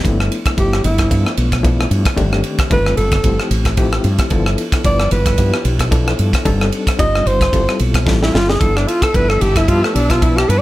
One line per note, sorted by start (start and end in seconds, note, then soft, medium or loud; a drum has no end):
0.03 0.28 G1 loud
0.03 0.54 F3 medium
0.03 0.54 A3 medium
0.03 0.54 B3 medium
0.03 0.54 D4 medium
0.03 0.54 E4 medium
0.03 kick medium
0.03 ride medium
0.20 cross-stick medium
0.32 ride medium
0.45 kick medium
0.45 cross-stick medium
0.45 ride medium
0.57 0.81 G1 medium
0.57 1.08 F3 medium
0.57 1.08 A3 medium
0.57 1.08 B3 medium
0.57 1.08 D4 medium
0.57 1.08 E4 medium
0.57 0.83 G4 medium
0.57 kick loud
0.57 ride medium
0.73 cross-stick medium
0.84 1.08 G1 medium
0.84 1.34 E4 medium
0.84 ride medium
0.98 kick medium
0.98 cross-stick medium
0.98 ride medium
1.10 1.24 G2 medium
1.10 1.61 F3 medium
1.10 1.61 A3 medium
1.10 1.61 B3 medium
1.10 1.61 D4 medium
1.10 1.61 F4 medium
1.10 kick medium
1.10 ride medium
1.26 cross-stick medium
1.37 1.85 B1 medium
1.37 ride medium
1.52 kick medium
1.52 cross-stick medium
1.52 ride medium
1.63 2.14 F3 medium
1.63 2.14 A3 medium
1.63 2.14 B3 medium
1.63 2.14 D4 medium
1.63 2.14 E4 medium
1.63 kick loud
1.63 ride medium
1.81 cross-stick medium
1.91 2.04 G2 medium
1.91 ride medium
2.05 kick medium
2.05 cross-stick medium
2.05 ride medium
2.16 2.41 G1 medium
2.16 2.67 D#3 loud
2.16 2.68 A3 medium
2.16 2.67 C4 medium
2.16 2.68 D4 medium
2.16 2.68 G4 loud
2.16 kick medium
2.16 ride medium
2.33 cross-stick medium
2.44 ride medium
2.58 kick medium
2.58 cross-stick medium
2.58 ride medium
2.70 2.95 G1 medium
2.70 3.21 D#3 medium
2.70 3.21 A3 medium
2.70 3.21 C4 medium
2.70 3.21 D4 medium
2.70 3.21 F4 medium
2.70 2.96 B4 medium
2.70 kick loud
2.70 ride medium
2.86 cross-stick medium
2.97 3.21 G1 medium
2.97 3.47 A4 medium
2.97 ride medium
3.11 kick medium
3.11 cross-stick medium
3.11 ride medium
3.23 3.37 G1 medium
3.23 3.75 F3 medium
3.23 3.74 A3 medium
3.23 3.75 C4 medium
3.23 3.75 E4 medium
3.23 3.75 G4 medium
3.23 kick medium
3.23 ride medium
3.40 cross-stick medium
3.51 3.98 A1 medium
3.51 ride medium
3.65 kick medium
3.65 cross-stick medium
3.65 ride medium
3.77 4.28 F3 medium
3.77 4.28 A3 medium
3.77 4.28 C4 medium
3.77 4.28 E4 medium
3.77 4.28 G4 medium
3.77 kick loud
3.77 ride medium
3.93 cross-stick medium
4.04 4.17 G2 medium
4.04 ride medium
4.18 kick medium
4.18 cross-stick medium
4.18 ride medium
4.30 4.55 G1 loud
4.30 4.82 F3 medium
4.30 4.82 B3 medium
4.30 4.82 D4 medium
4.30 4.82 E4 medium
4.30 4.82 A4 medium
4.30 kick medium
4.30 ride medium
4.46 cross-stick medium
4.58 ride medium
4.72 kick medium
4.72 cross-stick medium
4.72 ride medium
4.84 5.08 G1 medium
4.84 5.35 F3 medium
4.84 5.35 B3 medium
4.84 5.36 D4 medium
4.84 5.35 E4 medium
4.84 5.35 B4 medium
4.84 5.10 D5 medium
4.84 kick loud
4.84 ride medium
5.00 cross-stick medium
5.11 5.35 G1 loud
5.11 5.62 B4 medium
5.11 ride medium
5.26 kick medium
5.26 cross-stick medium
5.26 ride medium
5.38 5.51 G2 medium
5.38 5.89 F3 medium
5.38 5.89 B3 medium
5.38 5.89 D4 medium
5.38 5.89 E4 medium
5.38 5.89 G4 medium
5.38 kick medium
5.38 ride medium
5.54 cross-stick medium
5.65 6.13 B1 medium
5.65 ride medium
5.79 kick medium
5.79 cross-stick medium
5.79 ride medium
5.91 6.42 F3 medium
5.91 6.42 B3 medium
5.91 6.42 D4 medium
5.91 6.42 E4 medium
5.91 6.42 A4 medium
5.91 kick loud
5.91 ride medium
6.08 cross-stick medium
6.19 6.32 G2 medium
6.19 ride medium
6.33 kick medium
6.33 cross-stick medium
6.33 ride medium
6.45 6.69 G1 loud
6.45 6.96 G3 medium
6.45 6.96 C4 medium
6.45 6.96 D4 medium
6.45 6.96 D#4 medium
6.45 6.96 A4 loud
6.45 kick medium
6.45 ride medium
6.61 cross-stick medium
6.72 ride medium
6.87 kick medium
6.87 cross-stick medium
6.87 ride medium
6.99 7.23 G1 medium
6.99 7.50 G3 medium
6.99 7.50 C4 medium
6.99 7.50 D4 medium
6.99 7.50 D#4 medium
6.99 7.50 F4 medium
6.99 7.28 D#5 medium
6.99 kick loud
6.99 ride medium
7.15 cross-stick medium
7.26 7.50 G1 medium
7.26 7.80 C5 medium
7.26 ride medium
7.41 kick medium
7.41 cross-stick medium
7.41 ride medium
7.52 7.66 G1 medium
7.52 8.04 G3 medium
7.52 8.04 C4 medium
7.52 8.04 E4 medium
7.52 8.04 F4 medium
7.52 8.04 A4 medium
7.52 kick medium
7.52 ride medium
7.69 cross-stick medium
7.79 8.04 B1 medium
7.79 ride medium
7.94 kick medium
7.94 cross-stick medium
7.94 ride medium
8.06 8.31 A1 medium
8.06 8.57 G3 medium
8.06 8.57 C4 medium
8.06 8.57 E4 medium
8.06 8.57 F4 medium
8.06 8.57 A4 medium
8.06 kick loud
8.06 snare medium
8.23 8.35 E4 medium
8.23 snare medium
8.34 8.58 G1 medium
8.34 8.50 F4 medium
8.34 snare medium
8.49 8.62 G#4 medium
8.49 snare medium
8.60 8.85 G1 medium
8.60 9.11 F3 medium
8.60 9.11 B3 medium
8.60 9.11 D4 medium
8.60 9.11 E4 medium
8.60 9.11 A4 medium
8.60 8.78 A4 medium
8.60 10.62 B4 medium
8.60 10.62 E5 medium
8.60 10.62 A5 medium
8.60 10.62 E6 medium
8.60 kick medium
8.60 ride medium
8.77 8.89 D4 medium
8.77 cross-stick medium
8.88 9.04 F4 medium
8.88 ride medium
9.02 9.17 A4 medium
9.02 kick medium
9.02 cross-stick medium
9.02 ride medium
9.14 9.38 G1 medium
9.14 9.65 F3 medium
9.14 9.65 B3 medium
9.14 9.65 D4 medium
9.14 9.65 E4 medium
9.14 9.65 A4 medium
9.14 9.30 B4 loud
9.14 kick loud
9.14 ride medium
9.29 9.43 A4 medium
9.29 cross-stick medium
9.41 9.65 G1 loud
9.41 9.58 G4 medium
9.41 ride medium
9.56 9.70 E4 medium
9.56 kick medium
9.56 cross-stick medium
9.56 ride medium
9.68 9.81 G2 medium
9.68 10.19 F3 medium
9.68 10.19 B3 medium
9.68 10.19 D4 medium
9.68 10.19 E4 medium
9.68 9.85 F4 loud
9.68 10.19 G4 medium
9.68 kick medium
9.68 ride medium
9.83 9.96 A3 medium
9.83 cross-stick medium
9.95 10.43 B1 medium
9.95 10.12 D4 medium
9.95 ride medium
10.10 10.25 F4 medium
10.10 kick medium
10.10 cross-stick medium
10.10 ride medium
10.21 10.62 F3 medium
10.21 10.62 B3 medium
10.21 10.62 D4 medium
10.21 10.62 E4 medium
10.21 10.38 E4 medium
10.21 10.62 B4 medium
10.21 kick loud
10.21 ride medium
10.37 10.51 G4 medium
10.37 cross-stick medium
10.49 10.62 G2 medium
10.49 10.60 B4 medium
10.49 ride medium
10.59 10.62 D5 loud